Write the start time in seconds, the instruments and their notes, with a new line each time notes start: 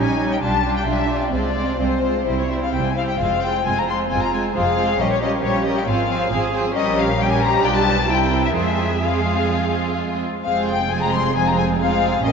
Already playing: double bass section A#1, viola section G3 C#4, violin section C#4 G4, cello section D#4
0.00 violin section G#5
0.18 viola section G3 C#4, violin section C#4 G4
0.32 violin section G5
0.41 double bass section B1, viola section G3 D4, cello section D4, violin section F4 G4 A5
0.63 viola section G3 D4, violin section F4 G4
0.76 violin section G5
0.85 double bass section B1, viola section G3 D4, violin section F4 G4 E5
1.07 viola section G3 D4, violin section F4 G4
1.22 violin section D5
1.32 double bass section C2, viola section G#3 C4, cello section C4, violin section F4 C5 D5
1.55 viola section G#3 C4, violin section F4 C5
1.78 double bass section C2, viola section G#3 C4, violin section F4 C5
2.02 viola section G#3 C4, violin section F4 C5
2.25 double bass section C2, viola section G3 C4, violin section E4 C5
2.38 violin section C#5
2.49 viola section G3 C4, violin section E4 C5 E5
2.62 violin section F5
2.73 double bass section C2, viola section G3 C4, violin section E4 C5 G5
2.86 violin section G#5
2.95 viola section G3 C4, violin section E4 C5 F5
3.09 violin section G5
3.19 double bass section F1, viola section G#3 C4, violin section F4 C5 F5
3.42 viola section G#3 C4, violin section F4 C5 G5
3.65 double bass section F1, viola section G#3 C4, violin section F4 C5 G#5
3.78 violin section A#5
3.86 viola section G#3 C4, violin section F4 C5 C6
4.09 double bass section F1, viola section G#3 C4, violin section F4 C5 G#5, cello section F4
4.23 violin section A#5
4.32 viola section G#3 C4, violin section F4 C5 G#5
4.54 double bass section F1, viola section G#3 C4, violin section F4 C5 F5, cello section G#4
4.76 viola section G#3 C4, violin section F4 C5
4.98 double bass section A#1, viola section G3 C#4, violin section G4 A#4 D#5, cello section G4
5.12 violin section C#5
5.20 viola section G3 C#4, violin section G4 A#4 D#5
5.43 double bass section A#1, viola section G3 C#4, violin section G4 A#4 C#5
5.65 viola section G3 C#4, violin section G4 A#4 D#5
5.80 violin section G5
5.87 double bass section G#1, viola section F3 C4, cello section F4, violin section G#4 C5 F5
6.08 viola section F3 C4, violin section G#4 C5
6.31 double bass section G#1, viola section F3 C4, cello section G#4, violin section G#4 C5
6.53 viola section F3 C4, violin section G#4 C5
6.74 double bass section A#1, viola section G3 C#4, cello section G4, violin section G4 A#4 D#5
6.96 violin section F5
7.18 viola section G3 C#4, cello section G4, violin section G4 A#4 G5
7.29 violin section G#5
7.40 violin section C5 A#5
7.63 double bass section B1, viola section G3 D4, violin section F4 D5 G5
7.74 violin section A5
7.87 violin section B4
8.09 double bass section C2, viola section G3 C4, cello section E4, violin section E4 A#4 G5
8.44 violin section E5
8.54 double bass section F2, viola section G#3 C4, violin section F4 G#4 E5, cello section G#4
9.03 viola section G#3 C4, violin section F4 G#4 F5
10.45 double bass section F1, cello section F2, viola section G#3 C4, violin section F4 G#4 F5
10.67 violin section G5
10.90 viola section G#3 C4, violin section F4 G#4 G#5
11.02 violin section A#5
11.12 violin section C6
11.35 viola section G#3 C4, violin section F4 G#4 G#5
11.47 violin section A#5
11.58 violin section G#5
11.80 viola section G#3 C4, violin section F4 G#4 F5
12.24 double bass section A#1, cello section A#2, viola section G3 C#4, violin section G4 A#4 D#5